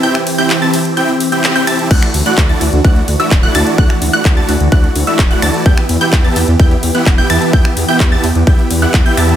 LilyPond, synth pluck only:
\new Staff \with { instrumentName = "Synth pluck" } { \time 4/4 \key d \mixolydian \tempo 4 = 128 g'''16 r8 g'''8 a'''16 r8 g'''16 r8 g'''8 g'''16 a'''8 | fis'''16 r8 fis'''8 a'''16 r8 fis'''16 r8 e'''8 fis'''16 a'''8 | fis'''16 r8 fis'''8 a'''16 r8 fis'''16 r8 e'''8 fis'''16 a'''8 | g'''16 r8 g'''8 a'''16 r8 g'''16 r8 fis'''8 g'''16 a'''8 |
g'''16 r8 g'''8 a'''16 r8 g'''16 r8 fis'''8 g'''16 a'''8 | }